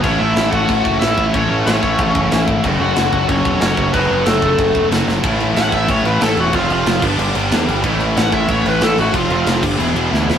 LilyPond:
<<
  \new Staff \with { instrumentName = "Lead electric guitar" } { \time 4/4 \key fis \minor \tempo 4 = 185 <cis' cis''>8 <e' e''>4 <fis' fis''>4. <e' e''>4 | <cis' cis''>4 <cis' cis''>2~ <cis' cis''>8 r8 | r8 <fis' fis''>4 <fis' fis''>8 <cis' cis''>4 <cis' cis''>4 | <b b'>4 <a a'>2 r4 |
\key a \mixolydian r4 fis''8 e''8 cis''8 b'8 a'8 fis'8 | f'8 f'4 r2 r8 | r4 fis''8 e''8 cis''8 b'8 a'8 fis'8 | f'8 f'4 r2 r8 | }
  \new Staff \with { instrumentName = "Distorted electric guitar" } { \time 4/4 \key fis \minor <a cis' e' a'>4. <a cis' e' a'>2~ <a cis' e' a'>8 | <a cis' e' a'>4. <a cis' e' a'>2~ <a cis' e' a'>8 | <fis cis' fis' a'>4. <fis cis' fis' a'>2~ <fis cis' fis' a'>8 | <fis cis' fis' a'>4. <fis cis' fis' a'>2~ <fis cis' fis' a'>8 |
\key a \mixolydian <a, e a cis' e'>1 | <f a c' f'>4. <g, d g b d'>2~ <g, d g b d'>8 | <a, e a cis' e'>1 | <f a c' f'>4. r8 <e b e' gis'>2 | }
  \new Staff \with { instrumentName = "Distorted electric guitar" } { \clef bass \time 4/4 \key fis \minor <a, e a>1 | <a, e a>1 | <fis, cis fis>1 | <fis, cis fis>1 |
\key a \mixolydian <a, e a>8 <a, e a>8 <a, e a>8 <a, e a>8 <a, e a>8 <a, e a>8 <a, e a>8 <a, e a>8 | <f, c f>8 <f, c f>8 <f, c f>8 <g, d g>8 <g, d g>8 <g, d g>8 <g, d g>8 <g, d g>8 | <a, e a>8 <a, e a>8 <a, e a>8 <a, e a>8 <a, e a>8 <a, e a>8 <a, e a>8 <a, e a>8 | <f, c f>8 <f, c f>8 <f, c f>8 <g, d g>8 <e, b, e>8 <e, b, e>8 <e, b, e>8 <e, b, e>8 | }
  \new Staff \with { instrumentName = "Overdriven electric guitar" } { \clef bass \time 4/4 \key fis \minor <a, e a>1 | <a, e a>1 | <fis, cis fis>1 | <fis, cis fis>1 |
\key a \mixolydian <a, e a>8 <a, e a>8 <a, e a>8 <a, e a>8 <a, e a>8 <a, e a>8 <a, e a>8 <a, e a>8 | <f, c f>8 <f, c f>8 <f, c f>8 <g, d g>8 <g, d g>8 <g, d g>8 <g, d g>8 <g, d g>8 | <a, e a>8 <a, e a>8 <a, e a>8 <a, e a>8 <a, e a>8 <a, e a>8 <a, e a>8 <a, e a>8 | <f, c f>8 <f, c f>8 <f, c f>8 <g, d g>8 <e, b, e>8 <e, b, e>8 <e, b, e>8 <e, b, e>8 | }
  \new Staff \with { instrumentName = "Picked electric bass" } { \clef bass \time 4/4 \key fis \minor a,,8 a,,8 a,,8 a,,8 a,,8 fis,,8 a,,8 a,,8 | a,,8 a,,8 a,,8 a,,8 a,,8 fis,,8 a,,8 gis,,8 | fis,,8 fis,,8 fis,,8 fis,,8 fis,,8 e,,8 fis,,8 fis,,8 | fis,,8 fis,,8 fis,,8 fis,,8 fis,,8 e,,8 fis,,8 fis,,8 |
\key a \mixolydian a,,4 a,,8 a,,8 a,,8 a,,8 a,,8 e,,8 | f,,8 f,,8 f,,8 g,,8 g,,8 g,,8 e,8 g,,8 | a,,4 a,,8 a,,8 a,,8 a,,8 a,,8 a,,8 | f,,8 f,,8 f,,8 g,,8 e,,8 e,,8 d,8 e,,8 | }
  \new DrumStaff \with { instrumentName = "Drums" } \drummode { \time 4/4 <cymc bd>4 <cymc sn>8 bd8 <cymc bd>8 bd8 <cymc sn>8 bd8 | <cymc bd>4 <cymc sn>8 bd8 <cymc bd>8 bd8 <cymc sn>8 bd8 | <cymc bd>4 <cymc sn>8 bd8 <cymc bd>8 bd8 <cymc sn>8 bd8 | <cymc bd>4 <cymc sn>8 bd8 <cymc bd>8 bd8 <cymc sn>8 sn8 |
<cymc bd>8 cymc8 <cymc sn>8 <cymc bd>8 <cymc bd>8 cymc8 <cymc sn>8 cymc8 | <cymc bd>8 cymc8 <cymc sn>8 <cymc bd>8 cymc8 cymc8 <cymc sn>8 cymc8 | <cymc bd>8 cymc8 <cymc sn>8 <cymc bd>8 <cymc bd>8 cymc8 <cymc sn>8 cymc8 | <cymc bd>8 cymc8 <cymc sn>8 <cymc bd>8 cymc8 cymc8 sn8 sn8 | }
>>